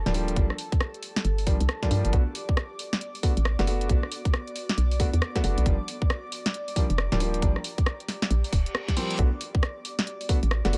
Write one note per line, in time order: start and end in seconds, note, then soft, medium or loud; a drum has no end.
0.00 2.13 G4 medium
0.00 2.14 A4 medium
0.00 10.78 D5 medium
0.00 2.14 A5 medium
0.06 0.35 D1 loud
0.06 0.11 F3 loud
0.06 0.11 G3 medium
0.06 0.11 A#3 medium
0.06 0.11 D4 loud
0.06 snare soft
0.06 closed hi-hat soft
0.14 0.34 F3 medium
0.14 0.34 G3 medium
0.14 0.34 A#3 medium
0.14 0.34 D4 medium
0.14 open hi-hat loud
0.28 closed hi-hat medium
0.36 0.49 G1 loud
0.36 0.44 F3 medium
0.36 0.44 G3 medium
0.36 0.44 A#3 medium
0.36 0.44 D4 medium
0.36 kick loud
0.36 closed hi-hat medium
0.50 cross-stick medium
0.58 open hi-hat loud
0.72 kick loud
0.72 closed hi-hat soft
0.80 cross-stick loud
0.94 closed hi-hat soft
1.03 open hi-hat medium
1.16 snare soft
1.16 closed hi-hat medium
1.25 1.58 G1 medium
1.25 closed hi-hat medium
1.38 open hi-hat medium
1.47 1.55 F3 medium
1.47 1.55 G3 medium
1.47 1.55 A#3 medium
1.47 1.55 D4 medium
1.47 kick loud
1.47 open hi-hat loud
1.60 1.68 C2 loud
1.60 closed hi-hat medium
1.69 cross-stick loud
1.83 1.87 F3 medium
1.83 1.87 G3 medium
1.83 1.87 A#3 medium
1.83 1.87 D4 loud
1.83 kick medium
1.83 snare soft
1.83 closed hi-hat medium
1.91 2.03 G2 medium
1.91 2.11 F3 medium
1.91 2.11 G3 medium
1.91 2.11 A#3 medium
1.91 2.11 D4 medium
1.91 open hi-hat loud
2.05 2.12 G1 medium
2.05 closed hi-hat medium
2.13 2.25 B1 loud
2.13 2.21 A3 medium
2.13 5.66 B3 medium
2.13 2.21 B3 medium
2.13 2.21 D4 medium
2.13 2.21 F#4 medium
2.13 9.18 D5 medium
2.13 9.18 D6 medium
2.13 kick loud
2.13 closed hi-hat medium
2.35 5.66 F#4 medium
2.35 open hi-hat loud
2.49 kick loud
2.57 cross-stick loud
2.79 open hi-hat loud
2.93 snare medium
2.93 closed hi-hat medium
3.01 closed hi-hat medium
3.15 open hi-hat medium
3.23 3.31 A3 medium
3.23 3.31 B3 medium
3.23 3.31 D4 medium
3.23 3.31 F#4 medium
3.23 kick loud
3.23 open hi-hat loud
3.37 3.56 A1 loud
3.37 closed hi-hat medium
3.45 cross-stick loud
3.59 3.88 F#1 loud
3.59 3.64 A3 medium
3.59 3.64 B3 medium
3.59 3.64 D4 medium
3.59 3.64 F#4 loud
3.59 snare soft
3.59 closed hi-hat medium
3.67 3.87 A3 medium
3.67 3.87 B3 medium
3.67 3.87 D4 medium
3.67 3.87 F#4 medium
3.67 open hi-hat loud
3.81 closed hi-hat medium
3.89 4.02 B1 loud
3.89 3.97 A3 medium
3.89 3.97 B3 medium
3.89 3.97 D4 medium
3.89 3.97 F#4 medium
3.89 kick loud
3.89 closed hi-hat medium
4.03 cross-stick medium
4.12 open hi-hat loud
4.25 kick loud
4.25 closed hi-hat soft
4.34 cross-stick loud
4.47 closed hi-hat soft
4.56 open hi-hat loud
4.69 snare medium
4.69 closed hi-hat medium
4.78 5.11 B1 medium
4.78 closed hi-hat medium
4.91 open hi-hat medium
5.00 5.08 A3 medium
5.00 5.08 B3 medium
5.00 5.08 D4 medium
5.00 5.08 F#4 medium
5.00 kick loud
5.00 open hi-hat loud
5.13 5.21 E2 loud
5.13 closed hi-hat medium
5.22 cross-stick loud
5.35 5.40 A3 medium
5.35 5.40 B3 medium
5.35 5.40 D4 medium
5.35 5.40 F#4 loud
5.35 kick medium
5.35 snare soft
5.35 closed hi-hat medium
5.44 5.56 F#1 loud
5.44 5.64 A3 medium
5.44 5.64 B3 medium
5.44 5.64 D4 medium
5.44 5.64 F#4 medium
5.44 open hi-hat loud
5.58 5.65 B1 medium
5.58 closed hi-hat medium
5.66 5.78 G1 loud
5.66 5.74 F3 medium
5.66 5.74 G3 medium
5.66 5.74 A#3 medium
5.66 5.74 D4 medium
5.66 9.19 G4 medium
5.66 kick loud
5.66 closed hi-hat medium
5.88 open hi-hat loud
6.02 kick loud
6.07 9.19 A#5 medium
6.07 cross-stick loud
6.32 open hi-hat loud
6.46 snare medium
6.46 closed hi-hat medium
6.54 closed hi-hat medium
6.68 open hi-hat medium
6.76 6.84 F3 medium
6.76 6.84 G3 medium
6.76 6.84 A#3 medium
6.76 6.84 D4 medium
6.76 kick loud
6.76 open hi-hat loud
6.90 7.09 F1 loud
6.90 closed hi-hat medium
6.98 cross-stick loud
7.12 7.41 D1 loud
7.12 7.17 F3 loud
7.12 7.17 G3 medium
7.12 7.17 A#3 medium
7.12 7.17 D4 loud
7.12 snare soft
7.12 closed hi-hat medium
7.20 7.40 F3 medium
7.20 7.40 G3 medium
7.20 7.40 A#3 medium
7.20 7.40 D4 medium
7.20 open hi-hat loud
7.34 closed hi-hat medium
7.42 7.55 G1 loud
7.42 7.50 F3 medium
7.42 7.50 G3 medium
7.42 7.50 A#3 medium
7.42 7.50 D4 medium
7.42 kick loud
7.42 closed hi-hat medium
7.56 cross-stick medium
7.64 open hi-hat loud
7.78 kick loud
7.78 closed hi-hat soft
7.86 cross-stick loud
8.00 closed hi-hat soft
8.08 snare soft
8.08 open hi-hat loud
8.22 snare medium
8.22 closed hi-hat medium
8.30 8.43 A#1 loud
8.30 closed hi-hat medium
8.30 reverse cymbal medium
8.44 open hi-hat medium
8.53 8.65 D1 medium
8.53 kick loud
8.53 open hi-hat loud
8.66 closed hi-hat medium
8.75 cross-stick loud
8.88 kick medium
8.88 snare soft
8.88 closed hi-hat medium
8.97 9.17 F3 medium
8.97 9.17 G3 medium
8.97 9.17 A#3 medium
8.97 9.17 C4 medium
8.97 open hi-hat loud
9.11 closed hi-hat medium
9.19 9.31 B1 loud
9.19 9.27 A3 medium
9.19 9.27 B3 medium
9.19 10.78 B3 medium
9.19 9.27 D4 medium
9.19 9.27 F#4 medium
9.19 10.78 D5 medium
9.19 10.78 D6 medium
9.19 kick loud
9.19 closed hi-hat medium
9.41 10.78 F#4 medium
9.41 open hi-hat loud
9.55 kick loud
9.63 cross-stick loud
9.85 open hi-hat loud
9.99 snare medium
9.99 closed hi-hat medium
10.07 closed hi-hat medium
10.21 open hi-hat medium
10.29 10.37 A3 medium
10.29 10.37 B3 medium
10.29 10.37 D4 medium
10.29 10.37 F#4 medium
10.29 kick loud
10.29 open hi-hat loud
10.43 10.62 A1 loud
10.43 closed hi-hat medium
10.51 cross-stick loud
10.65 10.78 F#1 loud
10.65 10.70 A3 medium
10.65 10.70 B3 medium
10.65 10.70 D4 medium
10.65 10.70 F#4 loud
10.65 snare soft
10.65 closed hi-hat soft
10.73 10.78 A3 medium
10.73 10.78 B3 medium
10.73 10.78 D4 medium
10.73 10.78 F#4 medium
10.73 open hi-hat loud